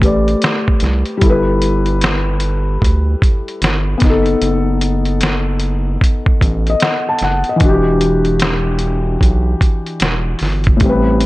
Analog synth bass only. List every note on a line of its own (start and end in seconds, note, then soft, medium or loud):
0.02 0.35 A1 medium
0.82 1.04 C2 loud
1.22 2.78 G1 loud
2.82 3.15 D2 medium
3.62 3.96 G1 medium
4.02 4.36 F#1 medium
4.42 5.98 F#1 loud
6.41 6.75 A1 medium
7.22 7.43 F#1 medium
7.61 9.17 E1 loud
9.21 9.55 B1 medium
10.01 10.35 E1 medium
10.41 10.75 G1 medium
10.81 11.26 A1 loud